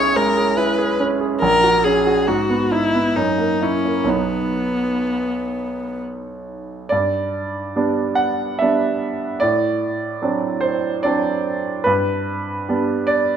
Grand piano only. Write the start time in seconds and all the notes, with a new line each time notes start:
Already playing: B1 C#4 E4 G#4
0.16 G#3
0.37 G#4
0.57 E4
0.78 G#4
1.00 C#4
1.21 G#4
1.42 A#1
1.64 F#4
1.86 C#4
2.07 F#4
2.28 G#2
2.50 B3
2.72 D#4
2.94 B3
3.16 F#2
3.38 A#3
3.62 E4
3.85 A#3
4.04 B1 F#3 B3 D#4
6.89 G2 D5
7.76 G3 B3 D4
8.15 F#5
8.59 G3 B3 D4 E5
9.40 A2 D5
10.22 F#3 C4 D4
10.61 C5
11.03 F#3 C4 D4 D5
11.84 G2 B4
12.69 G3 B3 D4
13.07 D5